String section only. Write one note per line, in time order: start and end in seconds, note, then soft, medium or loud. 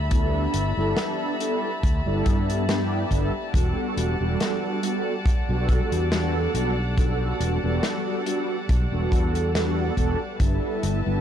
0.00 11.21 G3 medium
0.00 3.50 E5 medium
0.00 10.36 A5 medium
0.00 3.50 B5 medium
3.54 10.36 D5 medium
3.54 10.36 F#5 medium
10.40 11.21 B4 medium
10.40 11.21 E5 medium
10.40 11.21 A5 medium